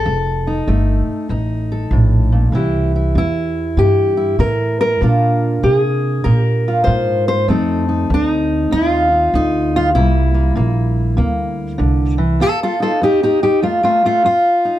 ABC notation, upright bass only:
X:1
M:4/4
L:1/8
Q:"Swing" 1/4=97
K:Cdor
V:1 name="Upright bass" clef=bass
F,,,2 G,,, z A,,,2 B,,,2 | C,,2 =E,,2 G,,2 A,,2 | B,,2 C,2 B,,2 _A,,2 | F,,2 D,,2 E,,2 D,,2 |
C,,2 B,,,2 D,,2 C,,2 | z8 |]